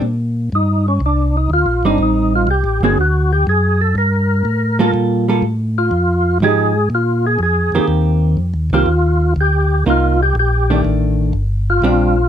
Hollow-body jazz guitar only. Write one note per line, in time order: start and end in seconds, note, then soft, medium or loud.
1.85 2.46 G3 medium
1.85 2.46 C4 medium
1.85 2.46 D#4 medium
2.83 2.96 D3 medium
2.83 2.96 A#3 medium
2.83 2.97 C4 medium
2.83 2.97 F#4 medium
4.79 5.25 G3 medium
4.79 5.25 A#3 medium
4.79 5.25 F4 medium
4.79 5.25 A4 medium
5.28 5.42 G3 medium
5.28 5.42 A#3 medium
5.28 5.43 F4 medium
5.28 5.42 A4 medium
6.42 6.73 F3 medium
6.42 6.73 G#3 medium
6.42 6.73 D#4 medium
6.42 6.73 G4 medium
7.75 8.36 D#3 medium
7.75 8.36 A#3 medium
7.75 8.36 C4 medium
7.75 8.36 G4 medium
8.73 8.86 D#3 medium
8.73 8.87 A#3 medium
8.73 8.87 C4 medium
8.73 8.87 G4 medium
9.86 10.17 A#3 medium
9.86 10.17 D#4 medium
9.86 10.17 F4 medium
10.70 11.31 D#3 medium
10.70 11.31 A3 medium
10.70 11.32 D4 medium
11.83 12.14 G3 medium
11.83 12.14 C4 medium
11.83 12.14 D4 medium